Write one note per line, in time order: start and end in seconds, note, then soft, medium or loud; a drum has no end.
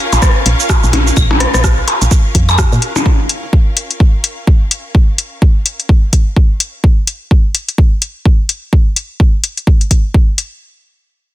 0.00 6.84 C#4 medium
0.00 3.07 F4 medium
0.00 6.84 A#4 medium
0.00 3.07 F5 medium
0.00 6.84 F5 medium
0.12 0.19 A#1 medium
0.12 closed hi-hat soft
0.12 cabasa soft
0.12 percussion blips soft
0.22 kick loud
0.22 cross-stick medium
0.22 cabasa soft
0.46 0.55 A#1 medium
0.46 closed hi-hat medium
0.60 cabasa soft
0.69 kick loud
0.69 cross-stick medium
0.69 cabasa soft
0.69 percussion blips soft
0.83 1.11 A#1 medium
0.83 cabasa soft
0.93 closed hi-hat medium
0.93 percussion blips medium
1.07 cabasa soft
1.17 1.46 A#1 loud
1.17 kick loud
1.17 cabasa soft
1.17 claves medium
1.31 percussion blips medium
1.31 percussion blips soft
1.40 cross-stick medium
1.40 closed hi-hat medium
1.54 1.82 A#1 medium
1.54 cross-stick medium
1.54 cabasa soft
1.64 kick loud
1.64 cross-stick medium
1.64 cabasa soft
1.88 closed hi-hat medium
1.88 percussion blips soft
2.02 2.08 A#1 medium
2.02 closed hi-hat soft
2.02 cabasa soft
2.11 kick loud
2.11 cabasa soft
2.35 2.64 F2 medium
2.35 kick medium
2.35 closed hi-hat medium
2.49 cabasa soft
2.49 claves medium
2.49 percussion blips soft
2.58 kick loud
2.58 cross-stick medium
2.58 cabasa soft
2.72 2.78 A#2 medium
2.72 cabasa soft
2.82 closed hi-hat medium
2.96 percussion blips medium
2.96 cabasa soft
3.06 kick loud
3.29 closed hi-hat medium
3.53 kick loud
3.77 closed hi-hat medium
3.91 closed hi-hat soft
4.00 kick loud
4.24 closed hi-hat medium
4.47 kick loud
4.71 closed hi-hat medium
4.95 kick loud
5.18 closed hi-hat medium
5.42 kick loud
5.66 closed hi-hat medium
5.80 closed hi-hat soft
5.89 kick loud
6.13 kick medium
6.13 closed hi-hat medium
6.36 kick loud
6.60 closed hi-hat medium
6.84 kick loud
7.07 closed hi-hat medium
7.31 kick loud
7.55 closed hi-hat medium
7.68 closed hi-hat soft
7.78 kick loud
8.02 closed hi-hat medium
8.26 kick loud
8.49 closed hi-hat medium
8.73 kick loud
8.96 closed hi-hat medium
9.20 kick loud
9.44 closed hi-hat medium
9.57 closed hi-hat soft
9.67 kick loud
9.81 closed hi-hat soft
9.91 kick medium
9.91 closed hi-hat medium
10.14 kick loud
10.38 closed hi-hat medium